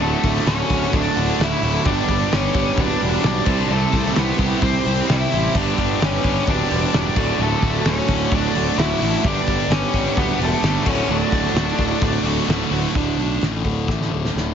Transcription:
Already playing: D4 F#4 A4 A5
0.00 D1 D2 A2 D3 A3 F#4 A4
0.23 D1 D3 A3 F#4, kick, open hi-hat
0.36 snare
0.46 D1 D2 A2 D3 A3 C#4 F#4 C#5, snare, open hi-hat
0.69 D1 D3 A3 F#4, kick, open hi-hat
0.92 D1 A2 D3 A3 D4 F#4 D5, kick, open hi-hat
1.16 D1 D2 A2 D3 A3 F#4, open hi-hat
1.39 D1 D2 A2 D3 A3 F#4 E5, snare, open hi-hat
1.44 E4
1.62 D1 D3 A3 F#4, open hi-hat
1.85 G1 G2 D3 G3 B3 D4 G4 B4 D5 B5, kick, open hi-hat
2.07 G1 G3 B3 D4 G4, kick, open hi-hat
2.31 G1 G2 D3 G3 B3 C#4 D4 G4 C#5, snare, open hi-hat
2.54 G1 G3 B3 D4 G4, kick, open hi-hat
2.77 D1 G3 B3 D4 G4, kick, open hi-hat
2.81 D5
2.99 E1 G2 D3 G3 B3 D4 G4, open hi-hat
3.22 B1 G2 D3 G3 B3 D4 G4, snare, open hi-hat
3.27 D4 D5
3.45 C2 C3 G3 C4 E4 G4 C5 E5 G5, kick, crash
3.69 C2 C3 G3 A3 C4 E4 G4 A4 C5
3.92 C2 C4 E4 G4 C5, kick, open hi-hat
4.06 snare
4.15 C2 C3 G3 C4 E4 G4 B4 C5, snare, open hi-hat
4.19 B3
4.38 C2 C4 E4 G4 C5, kick, open hi-hat
4.61 C2 C4 E4 G4 C5, kick, open hi-hat
4.85 C2 C3 G3 C4 E4 G4 C5, open hi-hat
5.08 C2 C3 G3 C4 E4 G4 C5 E5, snare, open hi-hat
5.32 A1 C4 E4 G4 C5, open hi-hat
5.54 G1 G2 D3 G3 B3 D4 G4 B4 D5 B5, kick, crash
5.77 G1 G3 B3 D4 G4, kick, open hi-hat
6.01 G1 G2 D3 G3 B3 C#4 D4 G4 C#5, snare, open hi-hat
6.24 G1 G3 B3 D4 G4, kick, open hi-hat
6.47 D1 G3 B3 D4 G4 D5, kick, open hi-hat
6.69 E1 G2 D3 G3 B3 D4 G4, open hi-hat
6.92 E1 G2 D3 G3 B3 D4 G4, snare, open hi-hat
6.96 D5
7.16 D1 D2 A2 D3 A3 F#4 A4 A5, kick, crash
7.38 D1 D2 A2 D3 A3 F#4 A4
7.62 D1 D3 A3 F#4, kick, open hi-hat
7.85 D1 D2 A2 D3 A3 C#4 C#5, snare, open hi-hat
7.89 F#4
8.08 D1 D3 A3 F#4, kick, open hi-hat
8.32 D1 A2 D3 A3 D4 F#4 D5, kick, open hi-hat
8.55 D1 D2 A2 D3 A3 F#4, open hi-hat
8.77 D1 D2 A2 D3 A3 E4 F#4 E5, snare, open hi-hat
9.01 A1 D3 A3 F#4, open hi-hat
9.23 G1 G2 D3 G3 B3 D4 G4 B4 D5 B5, kick, open hi-hat
9.47 G1 G3 B3 D4 G4, kick, open hi-hat
9.68 G1 G2 D3 G3 B3 C#4, snare, open hi-hat
9.72 D4 G4 C#5
9.93 G1 G3 B3 D4 G4, kick, open hi-hat
10.17 D1 G3 B3 D4 G4 B4, kick, open hi-hat
10.39 E1 G2 D3 G3 A3 B3 D4 G4, open hi-hat
10.43 A4
10.62 G1 G2 D3 G3 B3 D4 G4, snare, open hi-hat
10.85 D1 D2 A2 D3 A3 C#4 F#4 A4 C#5 A5, kick, crash
11.08 D1 D2 A2 D3 A3 D4 F#4
11.13 D5
11.32 D1 D3 A3 F#4, kick, open hi-hat
11.45 snare
11.54 D1 D2 A2 D3 A3 F#4, snare, open hi-hat
11.78 D1 D3 A3 F#4, kick, open hi-hat
12.02 D1 A2 D3 A3 F#4, kick, open hi-hat
12.24 D1 D2 A2 D3 A3 F#4, open hi-hat
12.48 D1 D2 A2 D3 A3 F#4, snare, open hi-hat
12.70 D1 D3 A3 F#4, open hi-hat
12.94 D1 D2 A2 D3, kick, open hi-hat
13.18 B1, open hi-hat
13.42 A1 A2, snare, open hi-hat
13.65 D1 A3, kick, open hi-hat
13.88 A1 D3, kick, snare
14.02 snare
14.11 D1 A3
14.25 snare
14.35 D1 A2, snare

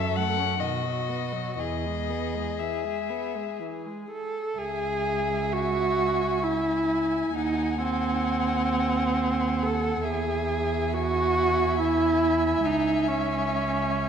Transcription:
Already playing: F#2 F#3 A4 E5
0.16 A3 F#5
0.39 C#4
0.60 B2 D#3 F#4 D#5
0.83 F#3
1.09 B3
1.32 F#3
1.58 E2 E3 G#4 D#5
1.85 G#3
2.10 B3
2.35 G#3
2.59 E3 E5
2.84 G#3
3.10 B3
3.35 G#3
3.59 E3
3.86 G#3
4.11 A4
4.58 C#2 G#4 E5 G#5
5.53 F#4
6.43 E4
7.36 D#2 D#4 F#5
7.83 C4
9.63 A4
10.03 E2 G#4 E5 G#5
10.93 F#4
11.80 E4
12.65 C#2 D#4
13.08 C#4

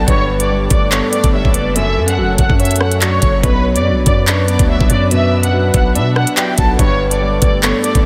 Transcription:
Already playing: F#3 B3
0.08 G1 G2 G3 D4 A4 B4 C#5 C#6, kick, closed hi-hat
0.40 D5 D6, closed hi-hat
0.50 G3
0.70 G1 A3 D5 D6, kick, closed hi-hat
0.92 B3 A4 C#5 C#6, clap, closed hi-hat
1.13 A3 D5 D6, closed hi-hat
1.24 G1, kick, closed hi-hat
1.33 G3 C#5 E5 E6
1.45 G1, kick
1.54 F#1 B4 D5 D6, closed hi-hat
1.76 F#2 F#3 A3 C#4 A4 E5 E6, closed hi-hat
1.97 F#2
2.08 F#5 F#6, closed hi-hat
2.18 F#1 F#3
2.38 F#1 A3 F#5 F#6, kick, closed hi-hat
2.50 F#2, kick
2.60 C#4 C#5 E5 E6, closed hi-hat
2.65 closed hi-hat
2.71 closed hi-hat
2.76 closed hi-hat
2.81 A3 F#5 F#6, cross-stick
2.92 closed hi-hat
3.01 F#3 C#5 D5 C#6, clap, closed hi-hat
3.22 F#1 C#5, kick, closed hi-hat
3.43 B1 B2 B3 D4 B4 C#5 B5, kick, closed hi-hat
3.76 F#2 D5 D6, closed hi-hat
3.85 F#3
3.91 B1
4.06 F#2 B3 D5 D6, kick, closed hi-hat
4.27 D4 B4 C#5 C#6, clap, closed hi-hat
4.48 B3 D5 D6, closed hi-hat
4.59 D2, kick, closed hi-hat
4.69 F#3 D5 E5 E6
4.81 B1, kick
4.90 F#2 C#5 D5 D6, closed hi-hat
5.11 B2 B4 E5 E6, closed hi-hat
5.43 F#5 F#6, closed hi-hat
5.53 F#3
5.74 B1 B3 F#5 F#6, kick, closed hi-hat
5.95 B2 D4 D5 E5 E6, closed hi-hat
6.16 B3 F#5 F#6, cross-stick
6.27 closed hi-hat
6.37 F#3 G4 E5 G5, clap, closed hi-hat
6.58 B1 A4 F#5 A5, kick, closed hi-hat
6.79 G1 G2 G3 A4 B4 C#5 C#6, kick, closed hi-hat
7.11 D5 D6, closed hi-hat
7.21 G3
7.42 G1 A3 D5 D6, kick, closed hi-hat
7.63 B3 A4 C#5 C#6, clap, closed hi-hat
7.84 A3 D5 D6, closed hi-hat
7.95 G1, kick, closed hi-hat

